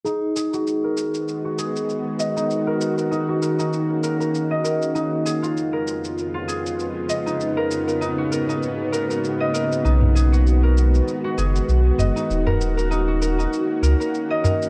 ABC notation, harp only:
X:1
M:4/4
L:1/16
Q:"Swing 16ths" 1/4=98
K:Cblyd
V:1 name="Harp"
^D z ^G ^F2 B4 F G z3 ^d D | z B z B E G B E z2 B B2 e B2 | E z A F2 B4 F A z3 e E | z B z B E G B E z2 B B2 e B2 |
^D z ^G ^F2 B4 F G z3 ^d D | z B z B E G B E z2 B B2 e B2 |]